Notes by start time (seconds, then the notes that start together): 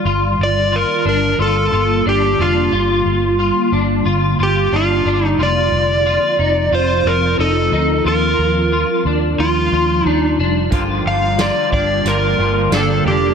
0.05 G1 D3 G3 A#3 F4
0.39 G1
0.43 D5
0.72 F4 A#4
1.05 G1 D4 A#4
1.38 G1 F4 A4
1.72 G1 F4
2.06 G1 D4 G4
2.39 F1 D4 F4
2.72 G1 F4
3.05 G1
3.39 F4
3.72 G1 D4
4.05 G1 F4
4.39 G1 F4
4.43 G4
4.72 G1 D4 F4
5.05 G1 D4
5.26 D#4
5.38 F1 F3 C4 F4
5.43 D5
5.72 F1
6.06 F4
6.39 F1 D#4
6.72 F1 F4 C5
7.05 F1 F4 A#4
7.39 F1 D#4 A4
7.72 D2 D#4
8.05 D#2 G3 D4 F4 A#4
8.38 D#2
8.72 F4
9.05 D#2 D4
9.38 D#2 F4
9.72 D#2 F4
10.05 D#2 D4 D#4
10.38 F1 D4
10.71 G1 G2 D3 F3 A#3 D4 F4, kick, closed hi-hat
10.75 G4
11.04 G1 A#3 D4 G4 F5
11.10 F3
11.37 F3 A#3 F4 D5, snare, closed hi-hat
11.41 D4 G4
11.72 G1 A#3 D4 G4 D5, kick
11.77 F3
12.05 G1 G2 D3 F3 A#3 D4 F4 A#4, closed hi-hat
12.09 G4
12.38 G1 A#3 D4 F4 G4
12.44 F3
12.70 G1 F3 A#3 D4, snare, closed hi-hat
12.75 D4 G4 A4
13.05 F1 D4 G4
13.09 F3 A#3